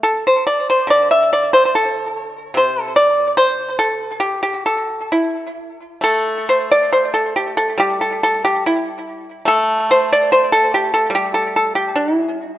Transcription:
0.03 0.24 A4 medium
0.27 0.46 C5 medium
0.47 0.67 D5 medium
0.70 0.89 C5 medium
0.87 2.55 D3 soft
0.87 1.10 D5 medium
1.11 1.30 E5 medium
1.33 1.52 D5 medium
1.53 1.64 C5 medium
1.65 1.73 C5 medium
1.75 2.33 A4 medium
2.54 5.10 C3 soft
2.54 2.82 C5 medium
2.82 2.94 A4 medium
2.96 3.34 D5 medium
3.37 3.76 C5 medium
3.79 4.19 A4 medium
4.20 4.41 G4 medium
4.43 4.64 G4 medium
4.66 5.08 A4 medium
5.12 5.77 E4 soft
6.01 8.62 A3 soft
6.01 6.45 A4 medium
6.49 6.69 C5 medium
6.71 6.91 D5 medium
6.93 7.13 C5 medium
7.14 7.34 A4 medium
7.36 7.56 G4 medium
7.57 7.77 A4 medium
7.78 10.30 G3 medium
7.78 7.99 G4 medium
8.01 8.20 A4 medium
8.23 8.42 A4 medium
8.45 8.63 G4 medium
8.66 9.23 E4 medium
9.45 11.96 A3 medium
9.45 9.86 A4 medium
9.91 10.09 C5 medium
10.12 10.30 D5 medium
10.32 10.50 C5 medium
10.52 10.71 A4 medium
10.74 10.92 G4 medium
10.94 11.12 A4 medium
11.10 12.58 G3 medium
11.15 11.33 G4 medium
11.34 11.53 A4 medium
11.56 11.75 A4 medium
11.75 11.95 G4 medium
11.96 12.15 D4 medium
12.15 12.58 E4 medium

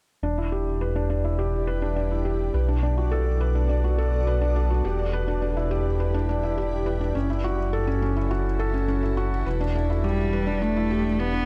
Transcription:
0.23 2.51 E1 medium
0.23 0.37 D4 medium
0.23 2.52 E4 medium
0.23 2.52 G4 medium
0.23 7.11 D5 medium
0.38 0.51 E4 medium
0.52 0.66 G4 medium
0.81 0.95 B4 medium
0.96 1.08 D4 medium
1.10 1.23 D4 medium
1.24 1.38 E4 medium
1.39 1.52 G4 medium
1.67 1.81 B4 medium
1.82 1.95 D4 medium
1.96 2.10 D4 medium
2.11 2.24 E4 medium
2.25 2.39 G4 medium
2.54 4.82 B1 medium
2.54 4.82 B3 medium
2.54 4.82 F#4 medium
2.54 4.82 A4 medium
2.54 2.68 B4 medium
2.68 2.81 D4 medium
2.83 2.96 D4 medium
2.98 3.11 F#4 medium
3.11 3.25 A4 medium
3.41 3.54 B4 medium
3.55 3.68 D4 medium
3.69 3.83 D4 medium
3.84 3.98 F#4 medium
3.98 4.12 A4 medium
4.27 4.41 B4 medium
4.41 4.54 D4 medium
4.56 4.70 D4 medium
4.70 4.84 F#4 medium
4.85 7.13 E1 medium
4.85 7.13 E4 medium
4.85 4.98 G4 medium
4.85 7.13 G4 medium
5.13 5.27 B4 medium
5.28 5.40 D4 medium
5.42 5.56 D4 medium
5.56 5.70 E4 medium
5.71 5.85 G4 medium
6.00 6.14 B4 medium
6.14 6.27 D4 medium
6.29 6.43 D4 medium
6.43 6.57 E4 medium
6.58 6.71 G4 medium
6.86 7.00 B4 medium
7.01 7.14 D4 medium
7.15 9.43 F#1 medium
7.15 7.29 C#4 medium
7.15 11.45 E4 medium
7.15 9.44 F#4 medium
7.15 9.44 A4 medium
7.30 7.43 E4 medium
7.44 7.58 F#4 medium
7.73 7.87 A4 medium
7.87 8.01 C#4 medium
8.02 8.16 C#4 medium
8.16 8.30 E4 medium
8.31 8.44 F#4 medium
8.59 8.73 A4 medium
8.74 8.87 C#4 medium
8.88 9.02 C#4 medium
9.03 9.16 E4 medium
9.17 9.31 F#4 medium
9.46 11.45 E1 medium
9.46 11.45 D4 medium
9.46 11.45 G4 medium
9.46 9.60 B4 medium
9.61 9.74 D4 medium
9.75 9.89 D4 medium
9.90 10.03 E4 medium
10.04 10.63 G3 medium
10.04 10.18 G4 medium
10.33 10.46 B4 medium
10.47 10.60 D4 medium
10.62 11.20 A3 medium
10.62 10.75 D4 medium
10.76 10.90 E4 medium
10.91 11.04 G4 medium
11.19 11.45 B3 medium
11.19 11.33 B4 medium
11.34 11.45 D4 medium

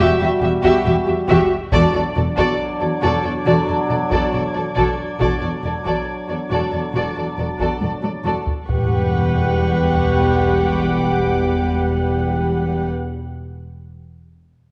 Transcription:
0.00 1.55 G3 medium
0.00 0.19 F#4 medium
0.00 1.55 F#4 medium
0.00 0.18 G4 medium
0.00 0.20 E5 medium
0.19 0.29 E2 medium
0.19 0.29 F#4 medium
0.19 0.27 G4 medium
0.19 0.30 E5 medium
0.40 0.50 E1 medium
0.40 0.50 E2 medium
0.40 0.50 F#4 medium
0.40 0.48 G4 medium
0.40 0.52 E5 medium
0.63 0.72 E2 medium
0.63 0.84 F#4 medium
0.63 0.84 G4 medium
0.63 0.85 E5 medium
0.63 taiko medium
0.85 0.94 E1 medium
0.85 0.94 E2 medium
0.85 0.94 F#4 medium
0.85 0.93 G4 medium
0.85 0.94 E5 medium
1.07 1.16 E2 medium
1.07 1.15 F#4 medium
1.07 1.15 G4 medium
1.07 1.17 E5 medium
1.28 1.38 E1 medium
1.28 1.37 E2 medium
1.28 1.49 F#4 medium
1.28 1.49 G4 medium
1.28 1.50 E5 medium
1.28 taiko medium
1.72 1.82 E1 medium
1.72 1.81 E2 medium
1.72 5.17 F#3 medium
1.72 5.17 D4 medium
1.72 1.93 F#4 medium
1.72 1.93 A4 medium
1.72 1.93 D5 medium
1.72 8.21 D6 soft
1.72 taiko medium
1.94 2.03 E2 medium
1.94 2.02 F#4 soft
1.94 2.02 A4 soft
1.94 2.04 D5 soft
2.15 2.25 E1 medium
2.15 2.24 E2 medium
2.15 2.23 F#4 soft
2.15 2.25 A4 soft
2.15 2.24 D5 soft
2.37 2.46 E2 medium
2.37 2.58 F#4 medium
2.37 2.58 A4 medium
2.37 2.58 D5 medium
2.37 taiko medium
2.59 6.81 G#6 soft
2.80 2.89 E2 soft
2.80 2.88 F#4 soft
2.80 2.89 A4 soft
2.80 2.89 D5 soft
3.01 3.12 E1 medium
3.01 3.11 E2 medium
3.01 3.22 F#4 medium
3.01 3.23 A4 medium
3.01 3.23 D5 medium
3.23 3.33 E2 soft
3.23 3.31 F#4 soft
3.23 3.32 A4 soft
3.23 3.33 D5 soft
3.45 3.54 E1 medium
3.45 3.55 E2 medium
3.45 3.65 F#4 medium
3.45 3.67 A4 medium
3.45 3.67 D5 medium
3.67 3.77 E2 soft
3.67 3.75 F#4 soft
3.67 3.77 A4 soft
3.67 3.76 D5 soft
3.87 3.98 E1 soft
3.87 3.98 E2 soft
3.87 3.95 F#4 soft
3.87 3.98 A4 soft
3.87 3.97 D5 soft
4.09 4.20 E2 medium
4.09 4.30 F#4 medium
4.09 4.32 A4 medium
4.09 4.32 D5 medium
4.09 taiko medium
4.31 4.42 E1 soft
4.31 4.42 E2 soft
4.31 4.39 F#4 soft
4.31 4.42 A4 soft
4.31 4.41 D5 soft
4.53 4.63 E2 soft
4.53 4.61 F#4 soft
4.53 4.65 A4 soft
4.53 4.62 D5 soft
4.75 4.85 E1 soft
4.75 4.85 E2 medium
4.75 4.97 F#4 medium
4.75 4.97 A4 medium
4.75 4.96 D5 soft
4.75 taiko medium
5.19 5.28 E1 soft
5.19 5.28 E2 soft
5.19 8.32 F#3 soft
5.19 8.32 D4 soft
5.19 5.39 F#4 medium
5.19 5.40 A4 soft
5.19 5.40 D5 medium
5.19 taiko medium
5.41 5.50 E2 soft
5.41 5.49 F#4 soft
5.41 5.50 A4 soft
5.41 5.49 D5 soft
5.61 5.72 E1 soft
5.61 5.72 E2 soft
5.61 5.69 F#4 soft
5.61 5.73 D5 soft
5.66 5.74 A4 soft
5.84 5.94 E2 soft
5.84 6.05 F#4 soft
5.84 6.07 A4 soft
5.84 6.07 D5 soft
5.84 taiko medium
6.27 6.36 E2 soft
6.27 6.35 F#4 soft
6.27 6.38 D5 soft
6.31 6.39 A4 soft
6.49 6.59 E1 soft
6.49 6.58 E2 soft
6.49 6.70 F#4 soft
6.49 6.71 D5 soft
6.53 6.72 A4 soft
6.72 6.80 E2 soft
6.72 6.80 F#4 soft
6.72 6.83 A4 soft
6.72 6.80 D5 soft
6.81 8.21 A6 soft
6.94 7.02 E1 soft
6.94 7.02 E2 soft
6.94 7.14 F#4 soft
6.94 7.16 A4 soft
6.94 7.15 D5 soft
7.15 7.24 E2 soft
7.15 7.23 F#4 soft
7.15 7.25 A4 soft
7.15 7.25 D5 soft
7.37 7.46 E1 soft
7.37 7.45 E2 soft
7.37 7.45 F#4 soft
7.37 7.47 A4 soft
7.37 7.47 D5 soft
7.58 7.68 E2 soft
7.58 7.79 F#4 soft
7.58 7.80 A4 soft
7.58 7.80 D5 soft
7.58 taiko medium
7.80 7.90 E1 soft
7.80 7.89 E2 soft
7.80 7.88 F#4 soft
7.80 7.91 A4 soft
7.80 7.91 D5 soft
7.80 taiko high medium
8.01 8.11 E2 soft
8.01 8.09 F#4 soft
8.01 8.11 A4 soft
8.01 8.12 D5 soft
8.01 taiko high medium
8.24 8.33 E1 soft
8.24 8.33 E2 soft
8.24 8.45 F#4 soft
8.24 8.46 A4 soft
8.24 8.46 D5 soft
8.24 taiko high medium
8.47 taiko low medium
8.67 12.86 E1 medium
8.67 12.87 E2 medium
8.67 12.87 G3 soft
8.67 12.87 G4 medium
8.67 12.88 G4 soft
8.67 12.87 B4 medium
8.67 12.86 F#5 medium
8.67 11.69 B5 soft
8.67 10.81 C#6 soft
8.67 taiko low medium
8.67 sub drop medium
10.42 11.69 D6 soft

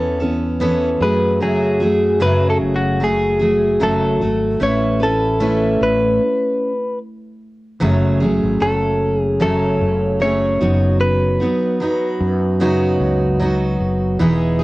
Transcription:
0.00 0.97 E2 medium
0.00 0.21 E3 medium
0.00 0.21 B3 medium
0.00 0.21 C#4 medium
0.00 0.19 A4 medium
0.00 0.57 C#5 medium
0.20 0.60 B3 soft
0.20 0.61 C#4 soft
0.20 0.60 A4 medium
0.60 1.01 E3 medium
0.60 1.01 B3 medium
0.60 1.02 C#4 medium
0.60 1.00 A4 medium
1.01 2.57 F#2 medium
1.01 1.40 F#3 soft
1.01 1.41 A3 soft
1.01 1.41 F#4 soft
1.01 1.41 G#4 soft
1.01 1.42 B4 medium
1.41 1.81 F#2 medium
1.41 1.81 C#3 medium
1.41 1.81 F#3 medium
1.41 1.81 A3 medium
1.41 1.80 F#4 medium
1.41 2.22 G#4 medium
1.41 1.79 G#4 medium
1.80 2.20 F#3 soft
1.80 2.20 A3 soft
1.80 2.21 F#4 soft
1.80 2.21 G#4 medium
2.20 3.01 F#2 medium
2.20 3.01 C#3 medium
2.20 2.99 F#3 medium
2.20 3.01 A3 medium
2.20 3.01 F#4 medium
2.20 3.02 G#4 medium
2.20 2.49 B4 medium
2.50 2.57 A4 medium
2.61 3.77 F#1 medium
2.76 3.03 F#4 medium
3.00 3.41 F#3 medium
3.00 3.41 A3 medium
3.00 3.39 F#4 medium
3.00 3.38 G#4 medium
3.00 3.83 G#4 medium
3.39 3.80 F#3 soft
3.39 3.80 A3 soft
3.39 3.81 F#4 soft
3.39 3.80 G#4 soft
3.80 4.18 F#1 medium
3.80 4.21 F#2 medium
3.80 4.21 C#3 medium
3.80 4.21 F#3 medium
3.80 4.21 A3 medium
3.80 4.20 F#4 medium
3.80 4.58 A4 medium
4.21 4.58 G#1 medium
4.21 4.59 F#3 soft
4.21 4.59 A3 soft
4.21 4.61 F#4 soft
4.60 5.77 A1 medium
4.60 5.01 A3 medium
4.60 5.01 C#4 medium
4.60 5.00 E4 medium
4.60 4.98 B4 medium
4.60 5.03 C#5 medium
5.00 5.39 C#4 soft
5.00 5.40 E4 soft
5.00 5.83 A4 medium
5.00 5.41 B4 soft
5.40 6.21 A3 medium
5.40 6.72 C#4 medium
5.40 6.21 E4 medium
5.40 6.22 B4 medium
5.81 6.18 A1 medium
5.81 6.98 B4 medium
7.80 8.39 F#1 medium
7.80 8.21 F#2 medium
7.80 8.21 C#3 medium
7.80 8.21 F#3 medium
7.80 8.21 A3 medium
7.80 8.20 C#4 medium
7.80 8.19 G#4 loud
8.20 8.59 F#3 soft
8.20 8.60 A3 soft
8.20 8.61 C#4 soft
8.20 8.61 G#4 medium
8.43 8.60 G#1 medium
8.60 9.77 F#1 medium
8.60 9.40 F#3 medium
8.60 9.40 A3 medium
8.60 9.41 C#4 medium
8.60 9.18 A4 medium
9.18 9.41 G#4 medium
9.40 10.20 F#2 medium
9.40 10.21 C#3 medium
9.40 10.19 F#3 medium
9.40 10.20 A3 medium
9.40 10.22 C#4 medium
9.40 10.21 A4 medium
9.81 10.57 F#1 medium
10.20 10.60 F#3 medium
10.20 10.61 A3 medium
10.20 10.61 C#4 medium
10.20 10.60 G#4 medium
10.20 11.00 C#5 medium
10.60 11.37 F#1 medium
10.60 11.42 F#2 soft
10.60 11.42 C#3 medium
10.60 11.42 F#3 medium
10.60 11.42 B3 medium
10.60 11.41 D#4 medium
10.60 11.39 F#4 medium
11.01 13.76 B4 medium
11.40 11.79 F#3 soft
11.40 11.80 B3 soft
11.40 11.81 D#4 soft
11.40 11.80 F#4 soft
11.80 12.60 F#3 medium
11.80 12.61 B3 medium
11.80 12.61 D#4 medium
11.80 12.61 F#4 medium
12.20 12.97 F#2 medium
12.60 13.40 F#2 medium
12.60 13.41 C#3 medium
12.60 13.38 F#3 medium
12.60 13.40 B3 medium
12.60 13.41 D#4 medium
12.60 13.41 F#4 medium
13.00 13.76 C#2 medium
13.40 14.19 F#3 medium
13.40 14.20 B3 medium
13.40 14.21 D#4 medium
13.40 14.21 F#4 medium
13.80 14.17 F#1 medium
14.19 14.64 E1 medium
14.19 14.60 E3 medium
14.19 14.60 B3 medium
14.19 14.59 D#4 medium
14.19 14.58 G#4 medium
14.59 14.64 D#4 medium
14.59 14.64 G#4 medium

